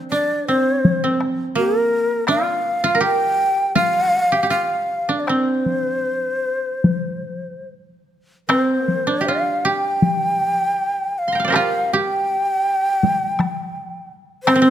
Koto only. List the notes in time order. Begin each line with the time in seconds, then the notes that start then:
Already playing: C4 D4 F4
0.12 D4
0.48 C4
1.04 C4
1.55 A#3
2.28 F4
2.84 F4
2.95 A#4
3.01 G4
3.75 F4
4.32 G4
4.43 G4
4.50 F4
5.09 D4
5.29 C4
8.49 C4
8.84 A#3
9.07 D4
9.21 G4
9.28 F4
9.65 G4
11.28 C6
11.32 G5 A#5
11.40 F5
11.44 C5 D5
11.50 G4 A#4
11.56 F4
11.93 G4
14.47 C4
14.56 C4
14.62 C4